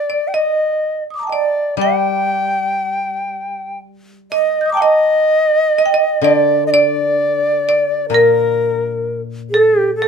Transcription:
Already playing: shakuhachi D5
0.10 marimba D5
0.28 shakuhachi G5
0.34 marimba D#5, shakuhachi D#5
1.10 marimba D6 D#6
1.19 marimba A5 A#5
1.27 marimba D#5 G5
1.32 shakuhachi D5, marimba D5
1.77 koto G3, shakuhachi G5
1.81 marimba G5
4.32 shakuhachi D#5, marimba D#5
4.61 marimba G6
4.66 marimba D6 D#6
4.72 shakuhachi G5, marimba A5 A#5
4.77 marimba G5
4.81 shakuhachi D#5, marimba D#5
5.78 marimba D#5
5.86 marimba G5
5.94 marimba D#5
6.22 koto D3, shakuhachi D5, marimba D5
6.67 shakuhachi D5 D#5
6.74 marimba D5
7.69 marimba D5
8.09 koto A#2, shakuhachi A#4
8.14 marimba A#4
9.50 shakuhachi A4, marimba A4
9.79 shakuhachi G4
9.95 shakuhachi A4
10.02 marimba A4

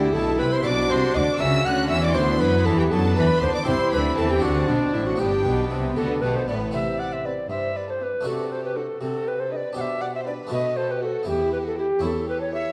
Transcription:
Already playing: double bass section D2, harpsichord D3 A3 E4 A4, cello section D3, viola section E4, violin section E4, recorder G4
0.13 double bass section B1, cello section B2, harpsichord B2, recorder A4, violin section A5
0.39 double bass section C2, cello section C3, harpsichord C3, recorder B4, violin section B5
0.52 recorder C5, violin section C6
0.63 double bass section B1, cello section B2, harpsichord B2 F#4 B4, viola section D4, violin section F#4 D6, recorder D5
0.90 double bass section C2, harpsichord C3, cello section C3, recorder C5, violin section C6
1.14 double bass section D2, harpsichord D3, cello section D3, recorder D#5, violin section D6
1.19 recorder D5
1.37 double bass section C#2, harpsichord C#3 F#4 A#4, cello section C#3, viola section C#4, violin section F#4 E6, recorder E5
1.65 double bass section D2, harpsichord D3, cello section D3, recorder F#5, violin section F#6
1.89 double bass section E2, harpsichord E3, cello section E3, recorder E5, violin section E6
2.02 recorder D5, violin section D6
2.13 double bass section D2, harpsichord D3 F#4 B4, cello section D3, viola section B3, violin section E4 C6, recorder C5
2.40 double bass section F#2, harpsichord F#3, cello section F#3, recorder B4, violin section B5
2.65 double bass section E2, harpsichord E3, cello section E3, recorder A4, violin section A5
2.78 recorder G4, violin section G5
2.91 double bass section F#2, cello section F#3, harpsichord F#3, violin section D4 A5, recorder A4
3.16 double bass section E2, harpsichord E3, cello section E3, recorder B4, violin section B5
3.41 double bass section D2, harpsichord D3, cello section D3, recorder C5, violin section C6
3.54 recorder D5, violin section D6
3.64 double bass section C2, harpsichord C3 E4 G4, cello section C3, violin section C4 C6, viola section E4, recorder C5
3.92 double bass section D2, harpsichord D3, cello section D3, recorder B4, violin section B5
4.17 double bass section E2, harpsichord E3, cello section E3, recorder A4, violin section A5
4.30 recorder G4, violin section G5
4.39 harpsichord C4 D4, viola section D4, recorder F#4, violin section F#5
4.43 double bass section D2, harpsichord D3, cello section D3
4.68 double bass section B1, harpsichord B2, cello section B2, recorder D4, violin section D5
4.93 double bass section A1, cello section A2, harpsichord A2, recorder E4, violin section E5
5.06 recorder F#4, violin section F#5
5.16 harpsichord B3 D4, violin section D4 G5, recorder G4
5.20 double bass section G1, cello section G2, harpsichord G2, viola section B3
5.45 double bass section B1, harpsichord B2, cello section B2
5.71 double bass section C2, harpsichord C3, cello section C3
5.96 double bass section D2, harpsichord D3, cello section D3, violin section B3 F#4, recorder A4
6.22 double bass section B1, cello section B2, harpsichord B2, violin section A3 G4, recorder B4
6.35 violin section A4, recorder C5
6.47 double bass section A1, harpsichord A2, cello section A2, violin section B3 B4, recorder D5
6.71 cello section C3, harpsichord C3 C4 E4, violin section C5, recorder E5
6.98 violin section D5, recorder F#5
7.12 violin section C5, recorder E5
7.24 viola section C4, violin section B4 G5, recorder D5
7.49 cello section G2, harpsichord G2, violin section C5, recorder E5
7.75 violin section B4, recorder D5
7.88 violin section A4, recorder C5
8.00 viola section C4, violin section G4 G5, recorder B4
8.21 harpsichord A3 D4 F#4
8.25 cello section C3, harpsichord C3, violin section F#4, recorder A4
8.51 violin section A4, recorder C5
8.63 violin section G4, recorder B4
8.76 viola section D4, violin section F#4 F#5, recorder A4
9.01 harpsichord C3, cello section C3, violin section F#4, recorder A4
9.26 violin section G4, recorder B4
9.39 violin section A4, recorder C5
9.51 viola section D4, violin section B4 F#5, recorder D#5
9.56 recorder D5
9.73 harpsichord B2 D4 G4, cello section B2
9.77 violin section C5, recorder F#5
9.81 recorder E5
10.01 violin section D5, recorder F#5
10.15 violin section C5, recorder E5
10.26 viola section D4, violin section B4 G5, recorder D5
10.47 harpsichord A3 B3 F#4
10.51 harpsichord B2, cello section B2, violin section B4, recorder D#5
10.76 violin section A4, recorder C5
10.90 violin section G4, recorder B4
11.02 violin section F#4 A5, viola section F#4, recorder A4
11.23 harpsichord E2 B3 E4, violin section E4
11.28 cello section E2, recorder G4
11.53 violin section G4, recorder B4
11.65 violin section F#4, recorder A4
11.78 violin section E4 B5, viola section G4, recorder G4
11.99 harpsichord E2 C#4 E4, cello section E2, violin section E4
12.05 recorder A4
12.27 violin section G4, recorder B4
12.40 violin section A4, recorder C#5
12.52 viola section G4, violin section C#5 C#6, recorder E5

